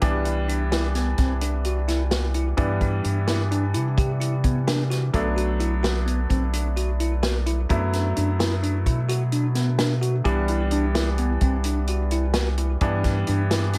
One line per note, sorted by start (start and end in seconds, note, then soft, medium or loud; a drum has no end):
0.02 1.15 C2 medium
0.02 2.54 E3 medium
0.02 2.54 G3 medium
0.02 2.54 B3 soft
0.02 2.54 D4 medium
0.02 0.15 G4 medium
0.02 kick medium
0.02 closed hi-hat medium
0.25 0.38 E4 medium
0.25 closed hi-hat soft
0.48 0.61 D4 medium
0.48 closed hi-hat medium
0.72 0.85 E4 medium
0.72 snare medium
0.72 closed hi-hat medium
0.95 1.08 B3 medium
0.95 snare soft
0.95 closed hi-hat medium
1.18 2.54 C2 medium
1.18 1.32 C4 medium
1.18 kick medium
1.18 snare soft
1.18 closed hi-hat medium
1.41 1.55 D4 medium
1.41 closed hi-hat medium
1.65 1.78 F#4 medium
1.65 closed hi-hat medium
1.88 2.01 E4 medium
1.88 snare soft
1.88 closed hi-hat soft
2.11 2.24 F#4 medium
2.11 snare loud
2.11 closed hi-hat medium
2.34 2.48 E4 medium
2.34 closed hi-hat medium
2.57 3.01 G2 loud
2.57 5.09 E3 medium
2.57 5.10 G3 medium
2.57 5.10 B3 soft
2.57 2.70 D4 medium
2.57 5.10 D4 medium
2.57 kick medium
2.57 closed hi-hat medium
2.81 2.94 D4 medium
2.81 kick medium
2.81 closed hi-hat soft
3.04 3.77 G2 medium
3.04 3.17 D4 medium
3.04 closed hi-hat medium
3.27 3.41 E4 medium
3.27 snare medium
3.27 closed hi-hat medium
3.51 3.64 D4 medium
3.51 closed hi-hat soft
3.74 5.10 C3 medium
3.74 3.87 E4 medium
3.74 closed hi-hat medium
3.97 4.10 G4 medium
3.97 kick medium
3.97 closed hi-hat medium
4.20 4.33 E4 medium
4.20 closed hi-hat medium
4.44 4.57 B3 medium
4.44 kick medium
4.44 closed hi-hat medium
4.68 4.80 D4 medium
4.68 snare loud
4.68 closed hi-hat medium
4.90 5.03 F#4 medium
4.90 snare soft
4.90 closed hi-hat medium
5.13 6.27 B1 loud
5.13 7.66 F#3 medium
5.13 7.66 A3 medium
5.13 7.66 B3 soft
5.13 7.67 D4 medium
5.13 5.27 A4 medium
5.13 kick medium
5.13 closed hi-hat medium
5.36 5.49 F#4 medium
5.36 closed hi-hat medium
5.60 5.73 E4 medium
5.60 closed hi-hat medium
5.83 5.96 F#4 medium
5.83 snare medium
5.83 closed hi-hat medium
6.06 6.19 B3 medium
6.06 closed hi-hat soft
6.30 7.66 B1 medium
6.30 6.43 C4 medium
6.30 kick medium
6.30 closed hi-hat soft
6.53 6.67 D4 medium
6.53 closed hi-hat medium
6.76 6.89 F#4 medium
6.76 closed hi-hat medium
7.00 7.13 E4 medium
7.00 closed hi-hat medium
7.23 7.36 F#4 medium
7.23 snare loud
7.23 closed hi-hat medium
7.46 7.59 E4 medium
7.46 closed hi-hat medium
7.69 8.13 F#2 loud
7.69 10.22 F#3 medium
7.69 10.22 A3 medium
7.69 10.22 B3 soft
7.69 7.82 D4 medium
7.69 10.22 E4 medium
7.69 kick medium
7.69 closed hi-hat medium
7.93 8.06 D4 medium
7.93 snare soft
7.93 closed hi-hat medium
8.16 8.88 F#2 medium
8.16 8.29 D4 medium
8.16 closed hi-hat medium
8.39 8.52 E4 medium
8.39 snare loud
8.39 closed hi-hat medium
8.63 8.76 D4 medium
8.63 closed hi-hat soft
8.86 10.22 B2 medium
8.86 8.99 E4 medium
8.86 kick medium
8.86 closed hi-hat medium
9.09 9.22 F#4 medium
9.09 closed hi-hat medium
9.32 9.45 D4 medium
9.32 closed hi-hat medium
9.55 9.68 B3 medium
9.55 snare soft
9.55 closed hi-hat medium
9.79 9.92 D4 medium
9.79 snare loud
9.79 closed hi-hat medium
10.01 10.15 F#4 medium
10.01 closed hi-hat medium
10.24 11.38 C2 loud
10.24 12.76 E3 medium
10.24 12.77 G3 medium
10.24 12.77 B3 soft
10.24 12.77 D4 medium
10.24 10.38 G4 medium
10.24 kick medium
10.24 closed hi-hat medium
10.48 10.62 E4 medium
10.48 closed hi-hat soft
10.71 10.85 D4 medium
10.71 closed hi-hat medium
10.95 11.08 E4 medium
10.95 snare medium
10.95 closed hi-hat medium
11.18 11.31 B3 medium
11.18 closed hi-hat soft
11.41 12.77 C2 medium
11.41 11.55 C4 medium
11.41 kick medium
11.41 closed hi-hat medium
11.64 11.78 D4 medium
11.64 closed hi-hat medium
11.87 12.01 F#4 medium
11.87 closed hi-hat medium
12.11 12.25 E4 medium
12.11 closed hi-hat soft
12.34 12.47 F#4 medium
12.34 snare loud
12.34 closed hi-hat medium
12.58 12.71 E4 medium
12.58 closed hi-hat medium
12.81 13.24 G2 loud
12.81 13.78 E3 medium
12.81 13.78 G3 medium
12.81 13.78 B3 medium
12.81 12.94 D4 medium
12.81 13.78 D4 medium
12.81 kick medium
12.81 closed hi-hat medium
13.04 13.17 D4 medium
13.04 kick medium
13.04 snare soft
13.04 closed hi-hat medium
13.27 13.78 G2 medium
13.27 13.41 D4 medium
13.27 closed hi-hat medium
13.51 13.64 E4 medium
13.51 snare medium
13.51 closed hi-hat medium
13.73 13.78 D4 medium
13.73 snare soft
13.73 closed hi-hat soft